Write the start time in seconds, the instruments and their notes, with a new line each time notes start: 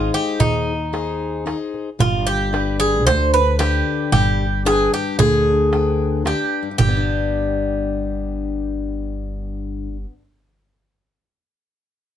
Already playing: steel-string acoustic guitar G#3 D#4 G#4 C5, bouzouki F4
0.14 bouzouki G4
0.40 upright bass D#2, bouzouki D#4, darbuka dum
0.93 steel-string acoustic guitar D#4 G#4 C5, darbuka tek
1.46 steel-string acoustic guitar D#4 G#4 C5, darbuka tek
1.74 darbuka tek
1.99 upright bass G1, steel-string acoustic guitar G3, bouzouki F4, darbuka dum
2.27 bouzouki G4, darbuka tek
2.53 steel-string acoustic guitar D4 G4 B4, darbuka tek
2.80 bouzouki G#4
3.06 upright bass D2, steel-string acoustic guitar D3, bouzouki C5, darbuka tek
3.34 bouzouki B4, darbuka tek
3.59 steel-string acoustic guitar D4 G4 B4, bouzouki G4, darbuka tek
4.12 upright bass G1, steel-string acoustic guitar G3, bouzouki G4, darbuka tek, darbuka dum
4.40 darbuka tek
4.65 steel-string acoustic guitar D4 B4 G5, bouzouki G#4, darbuka tek
4.93 bouzouki G4, darbuka tek
5.19 upright bass D2, steel-string acoustic guitar D3, bouzouki G#4, darbuka dum
5.73 steel-string acoustic guitar D4 B4 G5, darbuka tek
6.25 steel-string acoustic guitar D4 G4 B4, bouzouki G4, darbuka tek
6.63 steel-string acoustic guitar G2
6.71 steel-string acoustic guitar D3
6.78 upright bass G1, steel-string acoustic guitar G3, bouzouki G4, darbuka dum
6.89 steel-string acoustic guitar B3
6.97 steel-string acoustic guitar D4